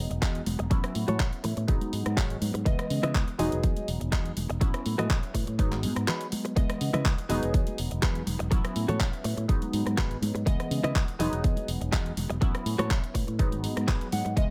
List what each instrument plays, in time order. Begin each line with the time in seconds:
Already playing: analog polysynth F#3 G#3 B3 D#4
0.10 fingered electric bass E1, muted clean electric guitar stroke, closed hi-hat
0.22 fingered electric bass E2, clean electric guitar F#4 G#4 D#5, kick, clap, closed hi-hat, low conga, shaker
0.35 closed hi-hat
0.46 fingered electric bass E1, open hi-hat, high conga, shaker
0.59 fingered electric bass E1, muted clean electric guitar stroke, closed hi-hat, shaker
0.70 fingered electric bass A1, analog polysynth F#3 B3 C#4 E4, muted clean electric guitar stroke, kick, closed hi-hat
0.84 muted clean electric guitar stroke, cross-stick, closed hi-hat
0.95 fingered electric bass A2, open hi-hat
1.08 fingered electric bass A2, clean electric guitar F#4 A4 C#5, closed hi-hat, high conga, low conga, shaker
1.20 fingered electric bass A1, kick, clap, closed hi-hat
1.33 closed hi-hat
1.44 fingered electric bass A2, muted clean electric guitar stroke, open hi-hat, low conga, shaker
1.57 fingered electric bass A2, muted clean electric guitar stroke, closed hi-hat
1.68 fingered electric bass G#1, analog polysynth F#3 G#3 B3 D#4, kick, closed hi-hat
1.81 closed hi-hat, high conga
1.93 fingered electric bass G#2, open hi-hat, shaker
2.06 fingered electric bass G#2, muted clean electric guitar stroke, cross-stick, closed hi-hat
2.17 fingered electric bass G#1, clean electric guitar F#4 G#4 C#5, kick, clap, closed hi-hat, low conga, shaker
2.30 closed hi-hat
2.42 fingered electric bass G#2, open hi-hat, high conga, shaker
2.54 fingered electric bass G#2, muted clean electric guitar stroke, closed hi-hat, shaker
2.65 fingered electric bass C#2, analog polysynth E3 G#3 B3 D#5, muted clean electric guitar stroke, kick, closed hi-hat
2.78 muted clean electric guitar stroke, cross-stick, closed hi-hat
2.90 fingered electric bass C#3, open hi-hat
3.03 fingered electric bass C#3, clean electric guitar E4 B4 D#5, cross-stick, closed hi-hat, high conga, low conga, shaker
3.15 fingered electric bass C#2, kick, clap, closed hi-hat
3.28 closed hi-hat
3.38 fingered electric bass E1, analog polysynth F#3 G#3 B3 D#4, clean electric guitar F#4 G#4 D#5, open hi-hat, low conga, shaker
3.52 fingered electric bass E1, closed hi-hat
3.63 fingered electric bass E2, kick, closed hi-hat
3.77 closed hi-hat, high conga
3.88 fingered electric bass E1, open hi-hat, shaker
4.00 fingered electric bass E1, muted clean electric guitar stroke, closed hi-hat
4.12 fingered electric bass E2, clean electric guitar F#4 G#4 D#5, kick, clap, closed hi-hat, low conga, shaker
4.26 closed hi-hat
4.37 fingered electric bass E1, open hi-hat, high conga, shaker
4.49 fingered electric bass E1, muted clean electric guitar stroke, closed hi-hat, shaker
4.60 fingered electric bass A1, analog polysynth F#3 B3 C#4 E4, muted clean electric guitar stroke, kick, closed hi-hat
4.74 muted clean electric guitar stroke, cross-stick, closed hi-hat
4.86 fingered electric bass A2, open hi-hat
4.98 fingered electric bass A2, clean electric guitar F#4 A4 D#5, cross-stick, closed hi-hat, high conga, low conga, shaker
5.10 fingered electric bass A1, kick, clap, closed hi-hat
5.23 closed hi-hat
5.34 fingered electric bass A2, muted clean electric guitar stroke, kick, open hi-hat
5.47 fingered electric bass A2, muted clean electric guitar stroke, closed hi-hat
5.58 fingered electric bass G#1, analog polysynth F#3 G#3 B3 D#4, kick, closed hi-hat
5.72 clap, closed hi-hat, high conga
5.83 fingered electric bass G#2, open hi-hat
5.96 fingered electric bass G#2, muted clean electric guitar stroke, cross-stick, closed hi-hat
6.07 clean electric guitar F#4 G#4 B4, clap, closed hi-hat, low conga, shaker
6.21 closed hi-hat
6.32 open hi-hat, high conga, shaker
6.45 muted clean electric guitar stroke, closed hi-hat, shaker
6.56 fingered electric bass C#2, analog polysynth E3 G#3 B3 D#5, muted clean electric guitar stroke, kick, closed hi-hat
6.69 muted clean electric guitar stroke, cross-stick, closed hi-hat
6.81 fingered electric bass C#3, open hi-hat
6.93 fingered electric bass C#3, clean electric guitar E4 B4 D#5, cross-stick, closed hi-hat, high conga, low conga, shaker
7.05 fingered electric bass C#2, kick, clap, closed hi-hat
7.18 closed hi-hat
7.29 fingered electric bass E1, analog polysynth F#3 G#3 B3 D#4, clean electric guitar F#4 G#4 D#5, open hi-hat, low conga, shaker
7.43 fingered electric bass E1, closed hi-hat
7.54 fingered electric bass E2, kick, closed hi-hat
7.67 closed hi-hat, high conga
7.78 fingered electric bass E1, open hi-hat
7.91 fingered electric bass E1, muted clean electric guitar stroke, closed hi-hat
8.02 fingered electric bass E2, clean electric guitar F#4 G#4 B4, kick, clap, closed hi-hat, low conga, shaker
8.15 closed hi-hat
8.27 fingered electric bass E1, open hi-hat, high conga, shaker
8.39 fingered electric bass E1, muted clean electric guitar stroke, closed hi-hat, shaker
8.51 fingered electric bass A1, analog polysynth F#3 B3 C#4 E4, muted clean electric guitar stroke, kick, closed hi-hat
8.64 muted clean electric guitar stroke, cross-stick, closed hi-hat
8.76 fingered electric bass A2, open hi-hat
8.88 fingered electric bass A2, clean electric guitar F#4 A4 C#5, closed hi-hat, high conga, low conga, shaker
9.00 fingered electric bass A1, kick, clap, closed hi-hat
9.13 closed hi-hat
9.24 fingered electric bass A2, muted clean electric guitar stroke, open hi-hat
9.37 fingered electric bass A2, muted clean electric guitar stroke, closed hi-hat
9.48 fingered electric bass G#1, analog polysynth F#3 G#3 B3 D#4, kick, closed hi-hat
9.62 closed hi-hat, high conga
9.73 fingered electric bass G#2, open hi-hat
9.86 fingered electric bass G#2, muted clean electric guitar stroke, cross-stick, closed hi-hat
9.97 fingered electric bass G#1, clean electric guitar F#4 G#4 B4, kick, clap, closed hi-hat, low conga, shaker
10.11 closed hi-hat
10.22 fingered electric bass G#2, open hi-hat, high conga, shaker
10.35 fingered electric bass G#2, muted clean electric guitar stroke, closed hi-hat
10.46 fingered electric bass C#2, analog polysynth E3 G#3 B3 D#5, muted clean electric guitar stroke, kick, closed hi-hat
10.59 muted clean electric guitar stroke, cross-stick, closed hi-hat
10.71 fingered electric bass C#3, open hi-hat
10.83 fingered electric bass C#3, clean electric guitar E4 B4 D#5, cross-stick, closed hi-hat, high conga, low conga, shaker
10.95 fingered electric bass C#2, kick, clap, closed hi-hat, shaker
11.08 closed hi-hat
11.19 fingered electric bass E1, analog polysynth F#3 G#3 B3 D#4, clean electric guitar F#4 G#4 D#5, open hi-hat, low conga, shaker
11.32 fingered electric bass E1, closed hi-hat, shaker
11.44 fingered electric bass E2, kick, closed hi-hat
11.56 closed hi-hat, high conga
11.68 fingered electric bass E1, open hi-hat, shaker
11.81 fingered electric bass E1, muted clean electric guitar stroke, closed hi-hat, shaker
11.92 fingered electric bass E2, clean electric guitar F#4 G#4 D#5, kick, clap, closed hi-hat, low conga, shaker
12.06 closed hi-hat
12.17 fingered electric bass E1, open hi-hat, high conga, shaker
12.30 fingered electric bass E1, muted clean electric guitar stroke, closed hi-hat, shaker
12.41 fingered electric bass A1, analog polysynth F#3 B3 C#4 E4, muted clean electric guitar stroke, kick, closed hi-hat
12.54 muted clean electric guitar stroke, cross-stick, closed hi-hat
12.66 fingered electric bass A2, open hi-hat, shaker
12.78 fingered electric bass A2, clean electric guitar F#4 A4 C#5, cross-stick, closed hi-hat, high conga, low conga, shaker
12.90 fingered electric bass A1, kick, clap, closed hi-hat, shaker
13.04 closed hi-hat
13.14 fingered electric bass A2, muted clean electric guitar stroke, kick, open hi-hat, shaker
13.27 fingered electric bass A2, muted clean electric guitar stroke, closed hi-hat
13.39 fingered electric bass G#1, analog polysynth F#3 G#3 B3 D#4, kick, closed hi-hat
13.52 closed hi-hat, high conga
13.64 fingered electric bass G#2, open hi-hat, shaker
13.76 fingered electric bass G#2, muted clean electric guitar stroke, cross-stick, closed hi-hat, shaker
13.88 fingered electric bass G#1, clean electric guitar F#4 G#4 B4, kick, clap, closed hi-hat, low conga, shaker
14.01 closed hi-hat
14.12 fingered electric bass G#2, clean electric guitar F#5, open hi-hat, high conga, shaker
14.25 fingered electric bass G#2, muted clean electric guitar stroke, closed hi-hat, shaker
14.36 fingered electric bass C#2, analog polysynth E3 G#3 B3 D#5, muted clean electric guitar stroke, kick, closed hi-hat